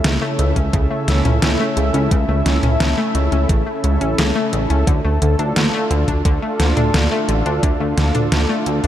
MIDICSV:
0, 0, Header, 1, 5, 480
1, 0, Start_track
1, 0, Key_signature, -1, "minor"
1, 0, Tempo, 689655
1, 1471, Time_signature, 4, 2, 24, 8
1, 6174, End_track
2, 0, Start_track
2, 0, Title_t, "Analog synth pad"
2, 0, Program_c, 0, 89
2, 0, Note_on_c, 0, 49, 76
2, 0, Note_on_c, 0, 61, 69
2, 0, Note_on_c, 0, 64, 69
2, 0, Note_on_c, 0, 69, 67
2, 0, Note_on_c, 0, 76, 83
2, 3363, Note_off_c, 0, 49, 0
2, 3363, Note_off_c, 0, 61, 0
2, 3363, Note_off_c, 0, 64, 0
2, 3363, Note_off_c, 0, 76, 0
2, 3393, Note_on_c, 0, 62, 76
2, 3394, Note_on_c, 0, 65, 70
2, 6174, Note_off_c, 0, 62, 0
2, 6174, Note_off_c, 0, 65, 0
2, 6174, Note_off_c, 0, 69, 0
2, 6174, End_track
3, 0, Start_track
3, 0, Title_t, "Synth arpeggio sound"
3, 0, Program_c, 1, 84
3, 31, Note_on_c, 1, 49, 87
3, 95, Note_off_c, 1, 49, 0
3, 151, Note_on_c, 1, 57, 106
3, 257, Note_off_c, 1, 57, 0
3, 271, Note_on_c, 1, 49, 76
3, 377, Note_off_c, 1, 49, 0
3, 391, Note_on_c, 1, 61, 78
3, 497, Note_off_c, 1, 61, 0
3, 511, Note_on_c, 1, 49, 100
3, 617, Note_off_c, 1, 49, 0
3, 630, Note_on_c, 1, 57, 72
3, 694, Note_off_c, 1, 57, 0
3, 751, Note_on_c, 1, 49, 78
3, 857, Note_off_c, 1, 49, 0
3, 871, Note_on_c, 1, 61, 71
3, 985, Note_off_c, 1, 61, 0
3, 991, Note_on_c, 1, 49, 85
3, 1055, Note_off_c, 1, 49, 0
3, 1112, Note_on_c, 1, 57, 104
3, 1218, Note_off_c, 1, 57, 0
3, 1231, Note_on_c, 1, 49, 77
3, 1337, Note_off_c, 1, 49, 0
3, 1351, Note_on_c, 1, 61, 78
3, 1457, Note_off_c, 1, 61, 0
3, 1472, Note_on_c, 1, 49, 97
3, 1578, Note_off_c, 1, 49, 0
3, 1592, Note_on_c, 1, 57, 77
3, 1655, Note_off_c, 1, 57, 0
3, 1712, Note_on_c, 1, 49, 74
3, 1818, Note_off_c, 1, 49, 0
3, 1831, Note_on_c, 1, 61, 76
3, 1945, Note_off_c, 1, 61, 0
3, 1951, Note_on_c, 1, 49, 86
3, 2015, Note_off_c, 1, 49, 0
3, 2071, Note_on_c, 1, 57, 106
3, 2177, Note_off_c, 1, 57, 0
3, 2191, Note_on_c, 1, 49, 78
3, 2297, Note_off_c, 1, 49, 0
3, 2312, Note_on_c, 1, 61, 76
3, 2418, Note_off_c, 1, 61, 0
3, 2431, Note_on_c, 1, 49, 101
3, 2537, Note_off_c, 1, 49, 0
3, 2551, Note_on_c, 1, 57, 74
3, 2615, Note_off_c, 1, 57, 0
3, 2671, Note_on_c, 1, 49, 77
3, 2777, Note_off_c, 1, 49, 0
3, 2791, Note_on_c, 1, 61, 76
3, 2905, Note_off_c, 1, 61, 0
3, 2911, Note_on_c, 1, 49, 82
3, 2975, Note_off_c, 1, 49, 0
3, 3031, Note_on_c, 1, 57, 102
3, 3137, Note_off_c, 1, 57, 0
3, 3151, Note_on_c, 1, 49, 75
3, 3257, Note_off_c, 1, 49, 0
3, 3272, Note_on_c, 1, 61, 77
3, 3378, Note_off_c, 1, 61, 0
3, 3392, Note_on_c, 1, 50, 98
3, 3498, Note_off_c, 1, 50, 0
3, 3511, Note_on_c, 1, 57, 78
3, 3575, Note_off_c, 1, 57, 0
3, 3632, Note_on_c, 1, 50, 74
3, 3738, Note_off_c, 1, 50, 0
3, 3753, Note_on_c, 1, 62, 73
3, 3866, Note_off_c, 1, 62, 0
3, 3872, Note_on_c, 1, 50, 84
3, 3935, Note_off_c, 1, 50, 0
3, 3992, Note_on_c, 1, 57, 105
3, 4098, Note_off_c, 1, 57, 0
3, 4111, Note_on_c, 1, 50, 79
3, 4217, Note_off_c, 1, 50, 0
3, 4232, Note_on_c, 1, 62, 79
3, 4338, Note_off_c, 1, 62, 0
3, 4352, Note_on_c, 1, 50, 100
3, 4458, Note_off_c, 1, 50, 0
3, 4471, Note_on_c, 1, 57, 74
3, 4535, Note_off_c, 1, 57, 0
3, 4592, Note_on_c, 1, 50, 77
3, 4698, Note_off_c, 1, 50, 0
3, 4711, Note_on_c, 1, 62, 73
3, 4825, Note_off_c, 1, 62, 0
3, 4831, Note_on_c, 1, 50, 87
3, 4895, Note_off_c, 1, 50, 0
3, 4951, Note_on_c, 1, 57, 104
3, 5057, Note_off_c, 1, 57, 0
3, 5071, Note_on_c, 1, 50, 76
3, 5177, Note_off_c, 1, 50, 0
3, 5191, Note_on_c, 1, 62, 75
3, 5297, Note_off_c, 1, 62, 0
3, 5311, Note_on_c, 1, 50, 99
3, 5417, Note_off_c, 1, 50, 0
3, 5431, Note_on_c, 1, 57, 75
3, 5495, Note_off_c, 1, 57, 0
3, 5551, Note_on_c, 1, 50, 74
3, 5657, Note_off_c, 1, 50, 0
3, 5671, Note_on_c, 1, 62, 71
3, 5785, Note_off_c, 1, 62, 0
3, 5791, Note_on_c, 1, 50, 82
3, 5855, Note_off_c, 1, 50, 0
3, 5911, Note_on_c, 1, 57, 106
3, 6017, Note_off_c, 1, 57, 0
3, 6031, Note_on_c, 1, 50, 79
3, 6137, Note_off_c, 1, 50, 0
3, 6151, Note_on_c, 1, 62, 79
3, 6174, Note_off_c, 1, 62, 0
3, 6174, End_track
4, 0, Start_track
4, 0, Title_t, "Analog synth bass"
4, 0, Program_c, 2, 38
4, 31, Note_on_c, 2, 37, 96
4, 128, Note_off_c, 2, 37, 0
4, 271, Note_on_c, 2, 37, 94
4, 368, Note_off_c, 2, 37, 0
4, 391, Note_on_c, 2, 37, 83
4, 488, Note_off_c, 2, 37, 0
4, 511, Note_on_c, 2, 37, 103
4, 608, Note_off_c, 2, 37, 0
4, 750, Note_on_c, 2, 37, 94
4, 848, Note_off_c, 2, 37, 0
4, 871, Note_on_c, 2, 37, 82
4, 968, Note_off_c, 2, 37, 0
4, 991, Note_on_c, 2, 37, 101
4, 1088, Note_off_c, 2, 37, 0
4, 1230, Note_on_c, 2, 37, 93
4, 1328, Note_off_c, 2, 37, 0
4, 1351, Note_on_c, 2, 37, 80
4, 1448, Note_off_c, 2, 37, 0
4, 1471, Note_on_c, 2, 37, 99
4, 1568, Note_off_c, 2, 37, 0
4, 1590, Note_on_c, 2, 37, 78
4, 1688, Note_off_c, 2, 37, 0
4, 1710, Note_on_c, 2, 37, 93
4, 1808, Note_off_c, 2, 37, 0
4, 1830, Note_on_c, 2, 37, 84
4, 1928, Note_off_c, 2, 37, 0
4, 1951, Note_on_c, 2, 37, 98
4, 2048, Note_off_c, 2, 37, 0
4, 2191, Note_on_c, 2, 37, 95
4, 2288, Note_off_c, 2, 37, 0
4, 2311, Note_on_c, 2, 37, 83
4, 2409, Note_off_c, 2, 37, 0
4, 2431, Note_on_c, 2, 33, 101
4, 2529, Note_off_c, 2, 33, 0
4, 2672, Note_on_c, 2, 37, 99
4, 2769, Note_off_c, 2, 37, 0
4, 2792, Note_on_c, 2, 33, 82
4, 2889, Note_off_c, 2, 33, 0
4, 2912, Note_on_c, 2, 37, 101
4, 3009, Note_off_c, 2, 37, 0
4, 3152, Note_on_c, 2, 33, 92
4, 3249, Note_off_c, 2, 33, 0
4, 3272, Note_on_c, 2, 37, 82
4, 3369, Note_off_c, 2, 37, 0
4, 3391, Note_on_c, 2, 38, 98
4, 3488, Note_off_c, 2, 38, 0
4, 3512, Note_on_c, 2, 38, 77
4, 3609, Note_off_c, 2, 38, 0
4, 3632, Note_on_c, 2, 38, 94
4, 3729, Note_off_c, 2, 38, 0
4, 3752, Note_on_c, 2, 38, 81
4, 3849, Note_off_c, 2, 38, 0
4, 3871, Note_on_c, 2, 38, 98
4, 3969, Note_off_c, 2, 38, 0
4, 4111, Note_on_c, 2, 38, 93
4, 4209, Note_off_c, 2, 38, 0
4, 4231, Note_on_c, 2, 38, 84
4, 4328, Note_off_c, 2, 38, 0
4, 4351, Note_on_c, 2, 38, 102
4, 4448, Note_off_c, 2, 38, 0
4, 4590, Note_on_c, 2, 38, 98
4, 4688, Note_off_c, 2, 38, 0
4, 4711, Note_on_c, 2, 38, 80
4, 4808, Note_off_c, 2, 38, 0
4, 4831, Note_on_c, 2, 38, 101
4, 4928, Note_off_c, 2, 38, 0
4, 5071, Note_on_c, 2, 33, 95
4, 5168, Note_off_c, 2, 33, 0
4, 5191, Note_on_c, 2, 38, 82
4, 5289, Note_off_c, 2, 38, 0
4, 5311, Note_on_c, 2, 38, 102
4, 5408, Note_off_c, 2, 38, 0
4, 5431, Note_on_c, 2, 38, 76
4, 5528, Note_off_c, 2, 38, 0
4, 5551, Note_on_c, 2, 38, 92
4, 5648, Note_off_c, 2, 38, 0
4, 5671, Note_on_c, 2, 38, 82
4, 5768, Note_off_c, 2, 38, 0
4, 5791, Note_on_c, 2, 38, 99
4, 5888, Note_off_c, 2, 38, 0
4, 6031, Note_on_c, 2, 38, 94
4, 6128, Note_off_c, 2, 38, 0
4, 6152, Note_on_c, 2, 38, 84
4, 6174, Note_off_c, 2, 38, 0
4, 6174, End_track
5, 0, Start_track
5, 0, Title_t, "Drums"
5, 30, Note_on_c, 9, 38, 122
5, 30, Note_on_c, 9, 42, 80
5, 100, Note_off_c, 9, 38, 0
5, 100, Note_off_c, 9, 42, 0
5, 271, Note_on_c, 9, 42, 80
5, 340, Note_off_c, 9, 42, 0
5, 391, Note_on_c, 9, 36, 63
5, 391, Note_on_c, 9, 42, 54
5, 460, Note_off_c, 9, 36, 0
5, 461, Note_off_c, 9, 42, 0
5, 511, Note_on_c, 9, 36, 123
5, 511, Note_on_c, 9, 42, 79
5, 580, Note_off_c, 9, 36, 0
5, 581, Note_off_c, 9, 42, 0
5, 752, Note_on_c, 9, 38, 63
5, 752, Note_on_c, 9, 42, 82
5, 821, Note_off_c, 9, 38, 0
5, 821, Note_off_c, 9, 42, 0
5, 871, Note_on_c, 9, 42, 54
5, 871, Note_on_c, 9, 47, 95
5, 941, Note_off_c, 9, 42, 0
5, 941, Note_off_c, 9, 47, 0
5, 990, Note_on_c, 9, 38, 118
5, 990, Note_on_c, 9, 42, 78
5, 1060, Note_off_c, 9, 38, 0
5, 1060, Note_off_c, 9, 42, 0
5, 1231, Note_on_c, 9, 42, 78
5, 1301, Note_off_c, 9, 42, 0
5, 1351, Note_on_c, 9, 42, 54
5, 1421, Note_off_c, 9, 42, 0
5, 1471, Note_on_c, 9, 36, 122
5, 1471, Note_on_c, 9, 42, 75
5, 1540, Note_off_c, 9, 36, 0
5, 1541, Note_off_c, 9, 42, 0
5, 1711, Note_on_c, 9, 38, 65
5, 1711, Note_on_c, 9, 42, 80
5, 1781, Note_off_c, 9, 38, 0
5, 1781, Note_off_c, 9, 42, 0
5, 1831, Note_on_c, 9, 42, 51
5, 1831, Note_on_c, 9, 47, 98
5, 1901, Note_off_c, 9, 42, 0
5, 1901, Note_off_c, 9, 47, 0
5, 1951, Note_on_c, 9, 38, 126
5, 1951, Note_on_c, 9, 42, 74
5, 2021, Note_off_c, 9, 38, 0
5, 2021, Note_off_c, 9, 42, 0
5, 2191, Note_on_c, 9, 42, 79
5, 2261, Note_off_c, 9, 42, 0
5, 2312, Note_on_c, 9, 42, 51
5, 2381, Note_off_c, 9, 42, 0
5, 2431, Note_on_c, 9, 36, 119
5, 2431, Note_on_c, 9, 42, 78
5, 2501, Note_off_c, 9, 36, 0
5, 2501, Note_off_c, 9, 42, 0
5, 2672, Note_on_c, 9, 42, 78
5, 2741, Note_off_c, 9, 42, 0
5, 2792, Note_on_c, 9, 42, 52
5, 2861, Note_off_c, 9, 42, 0
5, 2912, Note_on_c, 9, 38, 119
5, 2912, Note_on_c, 9, 42, 76
5, 2982, Note_off_c, 9, 38, 0
5, 2982, Note_off_c, 9, 42, 0
5, 3152, Note_on_c, 9, 42, 77
5, 3222, Note_off_c, 9, 42, 0
5, 3272, Note_on_c, 9, 42, 52
5, 3342, Note_off_c, 9, 42, 0
5, 3391, Note_on_c, 9, 36, 118
5, 3392, Note_on_c, 9, 42, 76
5, 3461, Note_off_c, 9, 36, 0
5, 3462, Note_off_c, 9, 42, 0
5, 3632, Note_on_c, 9, 42, 74
5, 3702, Note_off_c, 9, 42, 0
5, 3752, Note_on_c, 9, 42, 51
5, 3822, Note_off_c, 9, 42, 0
5, 3872, Note_on_c, 9, 38, 117
5, 3872, Note_on_c, 9, 42, 75
5, 3941, Note_off_c, 9, 38, 0
5, 3941, Note_off_c, 9, 42, 0
5, 4111, Note_on_c, 9, 42, 76
5, 4181, Note_off_c, 9, 42, 0
5, 4231, Note_on_c, 9, 36, 61
5, 4231, Note_on_c, 9, 42, 48
5, 4301, Note_off_c, 9, 36, 0
5, 4301, Note_off_c, 9, 42, 0
5, 4351, Note_on_c, 9, 36, 120
5, 4351, Note_on_c, 9, 42, 73
5, 4420, Note_off_c, 9, 36, 0
5, 4421, Note_off_c, 9, 42, 0
5, 4591, Note_on_c, 9, 38, 60
5, 4591, Note_on_c, 9, 42, 74
5, 4661, Note_off_c, 9, 38, 0
5, 4661, Note_off_c, 9, 42, 0
5, 4711, Note_on_c, 9, 42, 49
5, 4711, Note_on_c, 9, 47, 96
5, 4781, Note_off_c, 9, 42, 0
5, 4781, Note_off_c, 9, 47, 0
5, 4831, Note_on_c, 9, 38, 114
5, 4831, Note_on_c, 9, 42, 71
5, 4901, Note_off_c, 9, 38, 0
5, 4901, Note_off_c, 9, 42, 0
5, 5071, Note_on_c, 9, 42, 74
5, 5141, Note_off_c, 9, 42, 0
5, 5192, Note_on_c, 9, 42, 50
5, 5261, Note_off_c, 9, 42, 0
5, 5311, Note_on_c, 9, 36, 115
5, 5311, Note_on_c, 9, 42, 72
5, 5380, Note_off_c, 9, 36, 0
5, 5381, Note_off_c, 9, 42, 0
5, 5551, Note_on_c, 9, 38, 57
5, 5551, Note_on_c, 9, 42, 77
5, 5620, Note_off_c, 9, 38, 0
5, 5620, Note_off_c, 9, 42, 0
5, 5671, Note_on_c, 9, 42, 51
5, 5671, Note_on_c, 9, 47, 93
5, 5740, Note_off_c, 9, 42, 0
5, 5740, Note_off_c, 9, 47, 0
5, 5791, Note_on_c, 9, 38, 113
5, 5791, Note_on_c, 9, 42, 73
5, 5860, Note_off_c, 9, 38, 0
5, 5860, Note_off_c, 9, 42, 0
5, 6030, Note_on_c, 9, 42, 75
5, 6099, Note_off_c, 9, 42, 0
5, 6151, Note_on_c, 9, 42, 51
5, 6174, Note_off_c, 9, 42, 0
5, 6174, End_track
0, 0, End_of_file